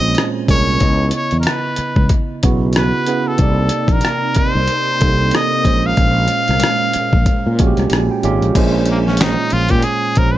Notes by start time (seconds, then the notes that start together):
Already playing: A#1 A#2 G#3 C4 C#4 C5 D#5
0.15 cross-stick, closed hi-hat
0.48 C2 A#2 G#3 C#4 A#4 C#5, kick, closed hi-hat
0.80 C#2 C#3 B3 E4 D#5, kick, closed hi-hat
1.11 closed hi-hat
1.16 C#5
1.31 E2, closed hi-hat
1.40 A#4, closed hi-hat
1.47 B4, cross-stick
1.76 muted fretless electric bass stroke, closed hi-hat
1.96 C#2, kick
2.09 kick, closed hi-hat
2.43 B1 C#3 B3 E4 F#4, kick, closed hi-hat
2.73 cross-stick, closed hi-hat
2.77 B4
3.06 C#3 B3 E4 B4, closed hi-hat
3.28 A4
3.38 C2 C3 A#3 C4 D#4 D5, kick, closed hi-hat
3.69 closed hi-hat
3.88 A#1, kick, closed hi-hat
3.93 A#4
4.01 cross-stick, closed hi-hat
4.35 C5, muted fretless electric bass stroke, kick, closed hi-hat
4.55 C2
4.68 closed hi-hat
5.00 C2 C3 A#3 D#4 A4, kick, closed hi-hat
5.31 D#5, cross-stick, closed hi-hat
5.64 A#1 A#2 G#3 C#4 C5, kick, closed hi-hat
5.87 F5
5.97 A#1, kick, closed hi-hat
6.28 closed hi-hat
6.48 C2, cross-stick, closed hi-hat
6.60 cross-stick, closed hi-hat
6.93 muted fretless electric bass stroke, closed hi-hat
7.13 A#1, kick
7.26 kick, closed hi-hat
7.47 A#2
7.59 A#1 A#2 G#3 C#4 F#4, kick, closed hi-hat
7.67 G4
7.77 C2, cross-stick, closed hi-hat
7.90 A#1 G#5, cross-stick, closed hi-hat
8.11 G5
8.23 G#1 A#2 G#3 C#4 G4 F5, closed hi-hat
8.42 A#1, closed hi-hat
8.55 A#1 A#2 G#3 C#4 C5, kick, closed hi-hat, crash
8.86 closed hi-hat
8.91 A#3
9.08 C#4, snare
9.17 snare, closed hi-hat
9.21 D#4, finger snap
9.50 A#1 F4, closed hi-hat
9.68 A#2 G4, kick, closed hi-hat
9.82 G#4, closed hi-hat
10.16 A#1 A#2 G#3 C#4 A#4 C5, kick, closed hi-hat
10.32 B4